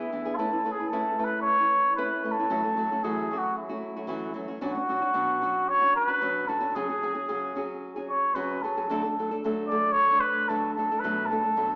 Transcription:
Already playing: nylon-string guitar E3 B3 D4 G#4, muted trumpet E4
0.12 nylon-string guitar E3 B3 D4 G#4
0.25 nylon-string guitar B3 D4 G#4
0.36 nylon-string guitar A3 C#4 E4 B4, muted trumpet A4
0.52 nylon-string guitar C#4 E4 B4
0.65 nylon-string guitar A3 C#4 E4 B4
0.71 muted trumpet G#4
0.80 nylon-string guitar C#4 E4 B4
0.88 muted trumpet A4
0.92 nylon-string guitar A3 C#4 E4 B4
1.19 nylon-string guitar A3 C#4 E4 B4
1.24 muted trumpet B4
1.42 muted trumpet C#5
1.58 nylon-string guitar C#4 E4 B4
1.96 nylon-string guitar A3 C#4 E4 B4, muted trumpet B4
2.24 nylon-string guitar A3 C#4 E4 B4
2.32 muted trumpet A4
2.39 nylon-string guitar C#4 E4 B4
2.50 nylon-string guitar F#2 E3 F#3 A3 C#4 F#4
2.63 nylon-string guitar F#3 A3 C#4 F#4
2.77 nylon-string guitar F#3 A3 C#4 F#4
2.92 nylon-string guitar F#3 A3 C#4 F#4
3.03 nylon-string guitar F#2 E3 F#3 A3 C#4 F#4, muted trumpet G#4
3.31 nylon-string guitar F#3 A3 C#4 F#4
3.38 muted trumpet F#4
3.58 muted trumpet E4
3.69 nylon-string guitar F#3 A3 C#4 F#4
3.96 nylon-string guitar F#3 A3 C#4 F#4
4.07 nylon-string guitar F#2 E3 F#3 A3 C#4 F#4
4.34 nylon-string guitar F#3 A3 C#4 F#4
4.48 nylon-string guitar F#3 A3 C#4 F#4
4.61 nylon-string guitar B2 F#3 C#4 D4 F#4
4.65 muted trumpet F#4
4.74 nylon-string guitar C#4 D4 F#4
4.88 nylon-string guitar F#3 C#4 D4 F#4
5.02 nylon-string guitar C#4 D4 F#4
5.14 nylon-string guitar B2 F#3 C#4 D4 F#4
5.42 nylon-string guitar F#3 C#4 D4 F#4
5.69 muted trumpet C#5
5.81 nylon-string guitar C#4 D4 F#4
5.96 muted trumpet B4
6.08 nylon-string guitar C#4 D4 F#4
6.21 nylon-string guitar B2 F#3 C#4 D4 F#4
6.48 nylon-string guitar F#3 C#4 D4 F#4, muted trumpet A4
6.60 nylon-string guitar C#4 D4 F#4
6.75 nylon-string guitar F#2 C#3 F#3 C#4 F#4 G#4, muted trumpet G#4
6.89 nylon-string guitar F#3 C#4 F#4 G#4
7.01 nylon-string guitar F#3 C#4 F#4 G#4
7.15 nylon-string guitar F#3 C#4 F#4 G#4
7.28 nylon-string guitar F#2 C#3 F#3 C#4 F#4 G#4
7.55 nylon-string guitar F#3 C#4 F#4 G#4
7.96 nylon-string guitar F#3 C#4 F#4 G#4
8.09 muted trumpet C#5
8.34 nylon-string guitar F#2 C#3 F#3 C#4 F#4 G#4, muted trumpet B4
8.62 nylon-string guitar F#3 C#4 F#4 G#4, muted trumpet A4
8.77 nylon-string guitar F#3 C#4 F#4 G#4
8.90 nylon-string guitar D3 F#3 A3 D4 A4
9.04 nylon-string guitar A3 D4 A4
9.19 nylon-string guitar F#3 A3 D4 A4
9.31 nylon-string guitar A3 D4 A4
9.44 nylon-string guitar D3 F#3 A3 D4 A4
9.67 nylon-string guitar F#3, muted trumpet D5
9.71 nylon-string guitar A3 D4 A4
9.92 muted trumpet C#5
10.11 nylon-string guitar A3 D4 A4
10.20 muted trumpet B4
10.48 nylon-string guitar D3 F#3 A3 D4 A4, muted trumpet A4
10.73 muted trumpet A4
10.77 nylon-string guitar F#3 A3 D4 A4
10.91 nylon-string guitar A3 D4 A4
10.99 muted trumpet B4
11.04 nylon-string guitar B2 F#3 A3 D4 A4
11.26 muted trumpet A4
11.30 nylon-string guitar F#3 A3 D4 A4
11.43 nylon-string guitar A3 D4 A4
11.56 nylon-string guitar B2 F#3 A3 D4 A4

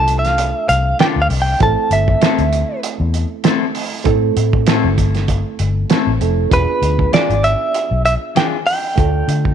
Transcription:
Already playing: fingered electric bass C2, reed electric piano A3 D4 F4 A4, clean electric guitar A5
0.08 closed hi-hat
0.19 clean electric guitar F5
0.25 snare, closed hi-hat
0.38 closed hi-hat
0.69 fingered electric bass C2, clean electric guitar F5, closed hi-hat
0.99 clean electric guitar D3 D4 F4 A4 G5, snare, closed hi-hat
1.16 fingered electric bass D2
1.22 clean electric guitar F5
1.29 fingered electric bass C2, open hi-hat
1.42 clean electric guitar G5
1.60 fingered electric bass A1, reed electric piano A3 C4 E4 A4, clean electric guitar A5, kick, closed hi-hat
1.90 fingered electric bass G1, clean electric guitar E5, closed hi-hat
2.08 kick
2.22 clean electric guitar A3 C4 E4 A4, snare, closed hi-hat
2.39 fingered electric bass D2, closed hi-hat
2.53 closed hi-hat
2.83 closed hi-hat
3.00 fingered electric bass E2
3.14 closed hi-hat
3.44 clean electric guitar A3 C4 E4 A4, snare, closed hi-hat
3.75 open hi-hat
4.04 fingered electric bass A2, reed electric piano A3 C4 E4 A4, kick, closed hi-hat
4.37 fingered electric bass A2, closed hi-hat
4.53 kick
4.67 clean electric guitar A3 C4 E4 A4, snare, closed hi-hat
4.84 fingered electric bass G1
4.98 kick, closed hi-hat
5.15 snare, closed hi-hat
5.28 kick, closed hi-hat
5.59 fingered electric bass G1, closed hi-hat
5.90 clean electric guitar A3 C4 E4 A4, snare, closed hi-hat
6.07 fingered electric bass A1
6.21 fingered electric bass F1, reed electric piano A3 C4 E4 A4, closed hi-hat
6.50 fingered electric bass E1, reed electric piano B3 D4 F4 G#4, clean electric guitar B4, kick, closed hi-hat
6.82 fingered electric bass D2, closed hi-hat
6.99 kick
7.13 clean electric guitar E3 D4 F4 G#4 D5, snare, closed hi-hat
7.30 fingered electric bass G#1, closed hi-hat
7.44 clean electric guitar E5, closed hi-hat
7.74 closed hi-hat
7.91 fingered electric bass B1
8.05 clean electric guitar E5, closed hi-hat
8.35 clean electric guitar E3 D4 F4 G#4 G5, snare, closed hi-hat
8.67 clean electric guitar G5, open hi-hat
8.95 fingered electric bass D2, reed electric piano A3 D4 F4 A4, kick, closed hi-hat
9.28 fingered electric bass D3, closed hi-hat
9.45 kick

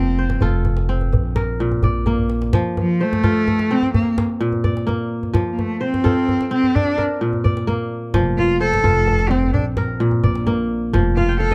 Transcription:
Already playing: upright bass F1, kora F3 A#3 D5, cello C4
0.06 djembe slap
0.19 kora C5
0.30 djembe slap, djembe tone
0.41 upright bass F1, kora F4 A4, djembe bass
0.65 djembe tone
0.77 djembe slap
0.89 kora C4, djembe slap
1.01 djembe tone
1.12 upright bass A#1, djembe bass
1.36 kora A#4, djembe slap, djembe tone
1.59 kora A#2, djembe slap
1.72 djembe slap, djembe tone
1.83 upright bass A#1, kora D5, djembe slap, djembe bass
2.06 kora A#3, djembe slap, djembe tone
2.18 djembe bass
2.30 djembe slap
2.42 djembe slap
2.53 kora F3, djembe slap, djembe bass
2.77 cello F3, djembe tone
3.01 cello A3, kora C5
3.13 djembe slap, djembe tone
3.23 kora F4 A4, djembe bass
3.36 djembe slap
3.48 djembe slap, djembe tone
3.59 djembe slap
3.71 kora C4, cello C4
3.83 djembe tone
3.94 cello A#3, djembe slap, djembe bass
4.18 djembe slap, djembe tone
4.30 djembe slap
4.40 kora A#2
4.52 djembe tone
4.64 kora D5, djembe bass
4.77 djembe slap
4.87 kora A#3, djembe tone
5.23 djembe tone
5.33 kora F3, djembe slap, djembe bass
5.52 cello A#3
5.59 cello A3, djembe tone
5.81 cello C4, kora C5
5.94 djembe slap, djembe tone
6.04 kora F4 A4, djembe bass
6.17 djembe slap
6.29 djembe slap, djembe tone
6.41 djembe slap
6.51 kora C4, cello C4
6.63 djembe tone
6.74 cello D4, djembe slap, djembe bass
6.98 kora A#4, djembe tone
7.10 djembe slap
7.21 kora A#2
7.33 djembe tone
7.44 kora D5, djembe bass
7.57 djembe slap
7.67 kora A#3, djembe tone
8.14 upright bass F1, kora F3, djembe slap, djembe bass
8.37 cello F4, djembe tone
8.60 cello A4, kora C5
8.73 djembe slap, djembe tone
8.84 upright bass F1, kora F4 A4, djembe bass
8.97 djembe slap
9.07 djembe slap, djembe tone
9.19 djembe slap
9.29 cello C4, kora C4
9.43 djembe tone
9.53 upright bass A#1, cello D4, djembe slap, djembe bass
9.77 kora A#4, djembe slap, djembe tone
9.88 djembe slap
10.00 kora A#2
10.11 djembe tone
10.24 upright bass A#1, kora D5, djembe bass
10.35 djembe slap
10.47 kora A#3, djembe tone
10.93 upright bass F1, kora F3, djembe slap, djembe bass
11.06 djembe slap
11.16 cello F4, kora F5, djembe tone
11.28 kora G5, djembe slap
11.40 cello A4, kora F5
11.51 kora D#5, djembe slap, djembe tone

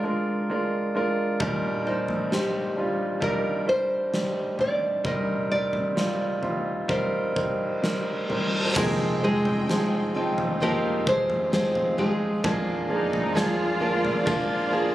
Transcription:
Already playing: grand piano F2 F3 G#3 D4 F4 A#4, nylon-string guitar A#4
0.03 grand piano G#3 D4 F4 A#4
0.50 grand piano G#3 D4 F4 A#4
0.95 grand piano G#3 D4 F4 A#4
1.40 grand piano D#2 A#2 G3 D4 D#4 A#4, kick, floor tom
1.85 grand piano G3 D#4 C5 D5, nylon-string guitar D#4
2.08 floor tom
2.30 grand piano G3 D4 D#4 C5, nylon-string guitar G4, snare
2.76 grand piano G3 D4 D#4 F4
3.20 grand piano G3 D4 D#4 A#4, nylon-string guitar A#4, kick, floor tom
3.66 grand piano G3 D4 D#4 C5, nylon-string guitar C5
4.12 grand piano G3 D4 D#4 G4, snare
4.58 grand piano G3 D4 D#4 C5, nylon-string guitar D5, floor tom
5.04 grand piano C2 G2 G3 C4 D#4 A#4, nylon-string guitar D#5, kick, floor tom
5.50 grand piano G3 C4 D#4 A#4, nylon-string guitar D5
5.73 floor tom
5.95 grand piano G3 C4 D#4 F4, snare
6.42 grand piano G3 C4 D#4 F4, floor tom
6.88 grand piano G3 C4 D#4 A#4, nylon-string guitar C5, kick, floor tom, reverse cymbal
7.34 grand piano G3 C4 D#4 A#4, kick
7.82 grand piano G3 C4 D#4 A#4, snare
8.29 grand piano G3 C4 D#4 A#4, floor tom
8.76 steel-string acoustic guitar F2 C3 D#3 G#3 C4 F4, string section F2 F3 G#3 D#4 G5, grand piano F2 C3 F3 C4 D#4 G#4, nylon-string guitar A#3 A#4, kick, floor tom, crash
9.22 grand piano F3 C4 D#4 G#4, nylon-string guitar G#3 G#4
9.45 floor tom
9.68 steel-string acoustic guitar D#3 G#3 C4 F4, grand piano F3 C4 D#4 G#4, snare
10.15 steel-string acoustic guitar D#3 G#3 C4 F4, grand piano F3 C4 D#4 G5
10.38 floor tom
10.60 steel-string acoustic guitar D#3 G#3 C4 F4, grand piano F3 C4 D#4 G4, nylon-string guitar A#3 A#4, string section F4
11.07 grand piano F3 C4 D#4 G#4, nylon-string guitar C4 C5, kick
11.30 floor tom
11.52 steel-string acoustic guitar D#3 G#3 C4 F4, grand piano F3 C4 D#4 G#4, nylon-string guitar C4 C5, snare
11.75 floor tom
11.98 steel-string acoustic guitar D#3 G#3 C4 F4, grand piano F3 C4 D#4 G#4, nylon-string guitar G#3 G#4, floor tom
12.44 steel-string acoustic guitar F2 G#3 A#3 F4, grand piano F2 F3 A#3 D4 G#4, string section C4 D5, kick, floor tom
12.89 grand piano F3 A#3 G#4 D5, cello section D#4
13.13 floor tom
13.35 grand piano F3 A#3 D4 G#4, steel-string acoustic guitar G#3 A#3 D4 F4, cello section F4, snare
13.80 grand piano F3 A#3 D4 A#4, steel-string acoustic guitar G#3 A#3 D4 F4
14.05 floor tom
14.25 grand piano F3 A#3 D4 F4, steel-string acoustic guitar G#3 A#3 D4 F4, cello section D4, kick
14.49 cello section F4
14.71 grand piano F3 A#3 D4 G#4

